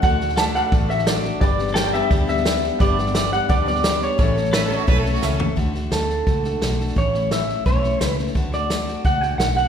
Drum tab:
HH |----p-------p---|----p-------p---|----p-------p---|----p-------p---|
SD |o-ooo-o-o-ooo-o-|o-ooo-o-o-ooo-o-|o-ooo-o-o-ooo-o-|o-ooo-o-o-ooo---|
FT |----------------|----------------|----------------|--------------o-|
BD |o-------o-------|o-------o-------|o-------o-------|o-------o-------|

HH |----p-------p---|----p-------p---|----p-------p---|
SD |o-o-o-o-o-o-o-oo|o-o-o-o-o-o-o-oo|o-o-o-o-o-o-o-o-|
FT |----------------|----------------|----------------|
BD |o-------o-------|o-------o-------|o-------o-------|